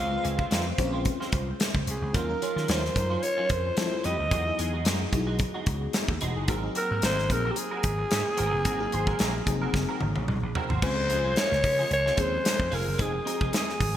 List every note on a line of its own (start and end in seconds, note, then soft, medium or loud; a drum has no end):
0.00 0.16 C#2 loud
0.00 0.11 G#3 medium
0.00 0.11 C4 medium
0.00 0.48 F5 medium
0.10 0.53 G#3 medium
0.10 0.53 C4 medium
0.10 0.53 C#4 medium
0.10 0.53 F4 medium
0.10 0.18 B4 medium
0.10 muted clean electric guitar stroke soft
0.18 0.56 C5 medium
0.22 0.44 C#2 medium
0.22 0.35 G#3 medium
0.22 0.35 C4 medium
0.22 0.35 G#4 medium
0.22 closed hi-hat medium
0.37 0.49 G#3 medium
0.37 0.48 C4 medium
0.37 0.48 F4 medium
0.37 kick medium
0.50 0.71 F2 medium
0.50 0.65 G#3 medium
0.50 0.65 C4 medium
0.50 0.64 F4 medium
0.50 snare loud
0.50 closed hi-hat medium
0.65 muted clean electric guitar stroke soft
0.78 1.08 A#1 medium
0.78 1.47 G#3 medium
0.78 1.47 C4 medium
0.78 1.48 C#4 medium
0.78 1.48 F4 medium
0.78 1.48 C5 medium
0.78 muted clean electric guitar stroke soft
0.78 kick medium
0.78 closed hi-hat medium
0.93 1.03 G#3 soft
0.93 1.03 C4 medium
0.93 1.03 F4 medium
1.05 muted clean electric guitar stroke soft
1.05 kick medium
1.05 closed hi-hat medium
1.20 1.32 G#3 medium
1.20 1.33 C4 medium
1.20 1.33 F4 medium
1.20 snare soft
1.32 1.52 C2 medium
1.32 muted clean electric guitar stroke soft
1.32 kick medium
1.32 closed hi-hat medium
1.47 muted clean electric guitar stroke soft
1.60 muted clean electric guitar stroke soft
1.60 snare loud
1.60 closed hi-hat medium
1.75 1.83 C#2 medium
1.75 muted clean electric guitar stroke soft
1.75 kick medium
1.87 1.97 C2 medium
1.87 2.17 G#4 medium
1.87 closed hi-hat medium
2.02 2.10 C#2 medium
2.02 muted clean electric guitar stroke soft
2.13 2.34 D#2 loud
2.13 2.23 F#3 medium
2.13 2.29 F#3 medium
2.13 2.23 C#4 medium
2.13 2.29 C#4 medium
2.13 2.23 D#4 medium
2.13 2.23 F4 medium
2.13 2.29 F4 medium
2.13 2.23 A#4 medium
2.13 2.71 A#4 medium
2.13 kick loud
2.13 closed hi-hat medium
2.28 2.70 F#3 medium
2.28 2.70 C#4 medium
2.28 2.70 D#4 medium
2.28 2.71 F4 medium
2.28 2.70 A#4 medium
2.28 muted clean electric guitar stroke soft
2.42 2.53 F#3 medium
2.42 2.53 C#4 medium
2.42 2.54 F4 medium
2.42 closed hi-hat medium
2.56 2.65 D#3 medium
2.56 2.67 F#3 soft
2.56 2.66 C#4 medium
2.56 2.66 F4 medium
2.56 snare soft
2.68 2.88 D#2 medium
2.68 2.83 F#3 medium
2.68 2.84 C#4 medium
2.68 2.82 F4 medium
2.68 3.25 C5 medium
2.68 snare loud
2.68 closed hi-hat medium
2.83 muted clean electric guitar stroke soft
2.83 snare soft
2.95 3.15 F#2 medium
2.95 3.64 F#3 medium
2.95 3.65 C#4 medium
2.95 3.65 D#4 medium
2.95 3.65 F4 medium
2.95 3.65 A#4 medium
2.95 muted clean electric guitar stroke soft
2.95 kick medium
2.95 closed hi-hat medium
3.10 3.21 F#3 medium
3.10 3.20 C#4 medium
3.10 3.20 F4 medium
3.23 3.52 C#5 loud
3.23 muted clean electric guitar stroke soft
3.23 closed hi-hat medium
3.37 3.49 F#3 medium
3.37 3.50 C#4 medium
3.37 3.50 F4 medium
3.49 3.69 F2 medium
3.49 4.07 C5 medium
3.49 muted clean electric guitar stroke soft
3.49 kick medium
3.49 closed hi-hat medium
3.65 muted clean electric guitar stroke soft
3.77 3.88 F3 medium
3.77 4.21 G3 medium
3.77 4.21 C4 medium
3.77 4.22 E4 medium
3.77 4.22 F4 medium
3.77 4.22 A4 medium
3.77 muted clean electric guitar stroke soft
3.77 snare loud
3.77 closed hi-hat medium
3.92 muted clean electric guitar stroke soft
4.04 4.15 F2 medium
4.04 4.19 A3 medium
4.04 4.18 E4 medium
4.04 4.17 G4 medium
4.04 4.86 D#5 loud
4.04 closed hi-hat medium
4.18 4.28 D2 medium
4.18 muted clean electric guitar stroke soft
4.30 4.50 E2 loud
4.30 4.40 F#3 medium
4.30 4.46 G#3 medium
4.30 4.40 B3 medium
4.30 4.41 D#4 medium
4.30 4.46 D#4 medium
4.30 4.41 E4 medium
4.30 4.45 F#4 medium
4.30 4.41 G#4 medium
4.30 kick loud
4.30 closed hi-hat medium
4.46 4.88 F#3 medium
4.46 4.88 B3 medium
4.46 4.88 D#4 medium
4.46 4.88 E4 medium
4.46 4.88 G#4 medium
4.46 muted clean electric guitar stroke soft
4.58 4.87 E2 medium
4.58 4.70 G#3 medium
4.58 4.70 D#4 medium
4.58 4.71 G#4 medium
4.58 closed hi-hat medium
4.73 4.83 G#3 soft
4.73 4.83 D#4 medium
4.73 4.83 F#4 medium
4.85 5.05 F#2 medium
4.85 5.00 G#3 medium
4.85 5.00 D#4 medium
4.85 4.98 F#4 medium
4.85 snare loud
4.85 closed hi-hat medium
5.00 muted clean electric guitar stroke soft
5.12 5.42 B1 medium
5.12 5.82 F#3 medium
5.12 5.82 B3 medium
5.12 5.82 D#4 medium
5.12 5.82 E4 medium
5.12 5.82 G#4 medium
5.12 muted clean electric guitar stroke soft
5.12 kick medium
5.12 closed hi-hat medium
5.27 5.37 G#3 soft
5.27 5.37 D#4 medium
5.27 5.37 F#4 medium
5.39 muted clean electric guitar stroke soft
5.39 kick medium
5.39 closed hi-hat medium
5.54 5.66 G#3 medium
5.54 5.67 D#4 medium
5.54 5.67 F#4 medium
5.66 5.86 C#2 medium
5.66 muted clean electric guitar stroke soft
5.66 kick medium
5.66 closed hi-hat medium
5.82 muted clean electric guitar stroke soft
5.93 muted clean electric guitar stroke soft
5.93 snare loud
5.93 closed hi-hat medium
6.08 6.17 D#2 medium
6.08 muted clean electric guitar stroke soft
6.08 kick medium
6.21 6.36 E1 medium
6.21 6.36 G#3 medium
6.21 6.36 D#4 medium
6.21 6.35 F#4 medium
6.21 closed hi-hat medium
6.36 6.49 F#1 medium
6.36 6.46 G#3 soft
6.36 6.46 D#4 soft
6.36 6.46 G#4 medium
6.48 6.68 G#1 medium
6.48 6.57 F#3 medium
6.48 6.58 A#3 medium
6.48 6.63 C4 medium
6.48 6.58 C4 medium
6.48 6.58 D#4 medium
6.48 6.63 F#4 medium
6.48 6.58 G#4 medium
6.48 6.62 A#4 medium
6.48 kick loud
6.48 closed hi-hat medium
6.62 7.04 F#3 medium
6.62 7.04 A#3 medium
6.62 7.05 C4 medium
6.62 7.05 D#4 medium
6.62 7.05 G#4 medium
6.62 muted clean electric guitar stroke soft
6.75 6.87 C4 medium
6.75 6.87 F#4 medium
6.75 6.88 A#4 medium
6.75 7.02 A#4 medium
6.75 closed hi-hat medium
6.90 7.00 G#2 medium
6.90 7.01 C4 soft
6.90 7.00 F#4 medium
6.90 7.00 A#4 medium
7.02 7.30 G#1 medium
7.02 7.17 C4 medium
7.02 7.17 F#4 medium
7.02 7.17 A#4 medium
7.02 7.34 C5 loud
7.02 snare loud
7.02 closed hi-hat medium
7.18 muted clean electric guitar stroke soft
7.18 snare soft
7.30 7.49 A#1 medium
7.30 7.99 F#3 medium
7.30 7.99 A#3 medium
7.30 7.99 C4 medium
7.30 7.99 D#4 medium
7.30 7.99 G#4 medium
7.30 7.52 A#4 medium
7.30 muted clean electric guitar stroke soft
7.30 kick medium
7.30 closed hi-hat medium
7.45 7.55 C4 medium
7.45 7.55 F#4 medium
7.45 7.54 A#4 medium
7.51 7.59 G4 medium
7.56 10.29 G#4 loud
7.56 muted clean electric guitar stroke soft
7.56 closed hi-hat medium
7.71 7.83 C4 medium
7.71 7.84 F#4 medium
7.71 7.84 A#4 medium
7.83 8.03 G#1 medium
7.83 muted clean electric guitar stroke soft
7.83 kick medium
7.83 closed hi-hat medium
7.99 muted clean electric guitar stroke soft
8.11 8.22 G#2 medium
8.11 muted clean electric guitar stroke soft
8.11 snare loud
8.11 closed hi-hat medium
8.25 muted clean electric guitar stroke soft
8.37 8.49 G#1 medium
8.37 8.52 C4 medium
8.37 8.52 F#4 medium
8.37 8.52 A#4 medium
8.37 closed hi-hat medium
8.53 8.62 F#1 medium
8.53 muted clean electric guitar stroke soft
8.64 8.85 G#1 loud
8.64 8.74 F#3 medium
8.64 8.74 A#3 medium
8.64 8.80 C4 medium
8.64 8.74 C4 medium
8.64 8.75 D#4 medium
8.64 8.80 F#4 medium
8.64 8.75 G#4 medium
8.64 8.79 A#4 medium
8.64 kick medium
8.64 closed hi-hat medium
8.79 9.21 F#3 medium
8.79 9.21 A#3 medium
8.79 9.21 C4 medium
8.79 9.21 D#4 medium
8.79 9.22 G#4 medium
8.79 muted clean electric guitar stroke soft
8.92 9.12 G#1 medium
8.92 9.04 C4 medium
8.92 9.04 F#4 medium
8.92 9.05 C5 medium
8.92 closed hi-hat medium
9.07 9.18 C4 medium
9.07 9.17 F#4 medium
9.07 9.17 A#4 medium
9.07 kick medium
9.19 9.39 A#1 medium
9.19 9.34 C4 medium
9.19 9.35 F#4 medium
9.19 9.34 A#4 medium
9.19 snare loud
9.19 closed hi-hat medium
9.35 muted clean electric guitar stroke soft
9.45 9.66 F1 medium
9.45 10.15 F#3 medium
9.45 10.15 A#3 medium
9.45 10.15 C4 medium
9.45 10.16 D#4 medium
9.45 10.16 G#4 medium
9.45 muted clean electric guitar stroke soft
9.45 kick medium
9.45 closed hi-hat medium
9.62 9.72 C4 medium
9.62 9.72 F#4 medium
9.62 9.71 A#4 medium
9.74 9.84 F#1 medium
9.74 muted clean electric guitar stroke soft
9.74 kick medium
9.74 snare medium
9.89 10.00 C4 medium
9.89 10.01 F#4 medium
9.89 10.01 A#4 medium
10.01 10.12 G#1 medium
10.01 muted clean electric guitar stroke soft
10.01 high tom medium
10.16 10.25 A#1 medium
10.16 muted clean electric guitar stroke soft
10.16 high tom medium
10.28 10.39 C2 medium
10.28 muted clean electric guitar stroke soft
10.28 mid tom medium
10.43 10.51 A#1 medium
10.43 muted clean electric guitar stroke soft
10.55 10.70 C4 medium
10.55 10.69 F#4 medium
10.55 10.69 A#4 medium
10.55 floor tom medium
10.69 10.79 G#1 medium
10.69 10.80 C4 soft
10.69 10.80 F#4 medium
10.69 10.79 C5 medium
10.69 floor tom medium
10.81 11.25 C#2 medium
10.81 11.00 F3 medium
10.81 11.00 G#3 medium
10.81 10.97 C4 medium
10.81 11.00 C4 medium
10.81 11.00 C#4 medium
10.81 10.96 F4 medium
10.81 11.00 G#4 medium
10.81 10.96 G#4 medium
10.81 11.39 C5 loud
10.81 kick loud
10.81 crash medium
10.97 muted clean electric guitar stroke soft
11.09 11.78 F3 medium
11.09 11.79 G#3 medium
11.09 11.21 C4 medium
11.09 11.79 C#4 medium
11.09 11.21 F4 medium
11.09 11.79 G#4 medium
11.09 11.21 G#4 medium
11.09 closed hi-hat medium
11.24 11.33 C2 medium
11.24 11.34 C4 soft
11.24 11.34 F4 medium
11.24 11.34 G#4 medium
11.36 11.51 C4 medium
11.36 11.51 F4 medium
11.36 11.50 G#4 medium
11.36 11.91 C#5 loud
11.36 snare loud
11.36 closed hi-hat medium
11.52 11.60 C#2 medium
11.52 muted clean electric guitar stroke soft
11.52 snare soft
11.64 11.83 C#3 medium
11.64 muted clean electric guitar stroke soft
11.64 kick medium
11.64 open hi-hat medium
11.79 11.89 C4 medium
11.79 11.89 F4 medium
11.79 11.88 G#4 medium
11.91 12.10 C#2 medium
11.91 12.23 C#5 loud
11.91 muted clean electric guitar stroke soft
11.91 closed hi-hat medium
12.06 12.17 C4 medium
12.06 12.18 F4 medium
12.06 12.18 G#4 medium
12.06 snare soft
12.17 12.37 D#2 medium
12.17 12.69 F3 medium
12.17 12.69 G#3 medium
12.17 12.69 C4 medium
12.17 12.69 C#4 medium
12.17 12.69 G#4 medium
12.17 muted clean electric guitar stroke soft
12.17 kick medium
12.17 closed hi-hat medium
12.21 12.76 C5 loud
12.33 muted clean electric guitar stroke soft
12.45 muted clean electric guitar stroke soft
12.45 snare loud
12.45 closed hi-hat medium
12.60 12.68 F2 medium
12.60 muted clean electric guitar stroke soft
12.60 kick medium
12.71 12.82 F1 medium
12.71 12.86 C4 medium
12.71 12.86 F4 medium
12.71 12.84 G#4 medium
12.71 13.04 A#4 medium
12.71 open hi-hat medium
12.86 12.96 F#1 medium
12.86 muted clean electric guitar stroke soft
12.98 13.18 F1 loud
12.98 13.17 F3 medium
12.98 13.17 G#3 medium
12.98 13.13 C4 medium
12.98 13.17 C4 medium
12.98 13.17 D#4 medium
12.98 13.13 D#4 medium
12.98 13.17 G#4 medium
12.98 13.12 G#4 medium
12.98 kick loud
12.98 closed hi-hat medium
13.02 13.55 G#4 loud
13.14 muted clean electric guitar stroke soft
13.25 13.95 F3 medium
13.25 13.95 G#3 medium
13.25 13.37 C4 medium
13.25 13.95 C4 medium
13.25 13.38 D#4 medium
13.25 13.95 D#4 medium
13.25 13.34 F#4 medium
13.25 13.38 A#4 medium
13.25 closed hi-hat medium
13.33 13.97 G#4 medium
13.40 13.50 F1 medium
13.40 13.51 C4 soft
13.40 13.51 D#4 medium
13.40 13.50 G#4 medium
13.40 kick medium
13.52 13.68 C4 medium
13.52 13.68 D#4 medium
13.52 13.68 G#4 medium
13.52 snare loud
13.52 closed hi-hat medium
13.57 13.97 G#4 medium
13.69 muted clean electric guitar stroke medium
13.69 snare soft
13.80 13.97 G#1 medium
13.80 muted clean electric guitar stroke soft
13.80 kick medium
13.80 open hi-hat medium